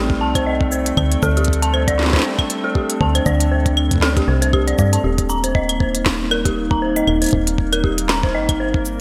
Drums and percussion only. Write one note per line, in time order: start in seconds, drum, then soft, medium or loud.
0.10 kick loud
0.35 kick loud
0.35 closed hi-hat medium
0.35 claves medium
0.61 kick loud
0.72 shaker medium
0.86 closed hi-hat medium
0.97 kick loud
0.97 claves medium
1.12 closed hi-hat medium
1.23 kick loud
1.23 shaker medium
1.37 closed hi-hat soft
1.44 kick loud
1.44 closed hi-hat soft
1.53 closed hi-hat medium
1.62 closed hi-hat medium
1.74 claves medium
1.88 kick loud
1.88 closed hi-hat medium
1.99 snare medium
2.03 snare medium
2.06 snare medium
2.10 kick loud
2.10 snare medium
2.13 snare medium
2.16 snare medium
2.19 snare medium
2.22 snare loud
2.39 kick loud
2.39 claves medium
2.50 closed hi-hat medium
2.75 kick loud
2.90 closed hi-hat medium
3.01 kick loud
3.15 closed hi-hat medium
3.15 claves medium
3.26 kick loud
3.26 shaker medium
3.40 closed hi-hat medium
3.66 kick loud
3.66 closed hi-hat medium
3.77 claves medium
3.91 kick loud
3.91 closed hi-hat medium
3.94 kick medium
3.96 kick medium
3.98 kick medium
4.00 kick soft
4.00 snare loud
4.17 kick loud
4.17 closed hi-hat soft
4.42 closed hi-hat medium
4.53 kick loud
4.53 claves medium
4.68 closed hi-hat soft
4.79 kick loud
4.79 shaker medium
4.93 closed hi-hat medium
5.18 kick loud
5.18 closed hi-hat medium
5.30 shaker medium
5.44 closed hi-hat medium
5.55 kick loud
5.69 closed hi-hat medium
5.69 claves medium
5.80 kick loud
5.95 closed hi-hat medium
6.06 kick loud
6.06 snare loud
6.31 claves medium
6.45 kick loud
6.45 closed hi-hat medium
6.71 kick loud
6.96 closed hi-hat medium
7.07 claves medium
7.22 closed hi-hat medium
7.24 closed hi-hat soft
7.26 closed hi-hat soft
7.28 closed hi-hat soft
7.31 kick loud
7.31 closed hi-hat soft
7.47 closed hi-hat medium
7.58 kick loud
7.73 closed hi-hat medium
7.73 claves medium
7.84 kick loud
7.98 closed hi-hat medium
8.09 snare loud
8.23 kick loud
8.49 kick loud
8.49 closed hi-hat medium
8.49 claves medium
8.74 kick loud
8.85 shaker medium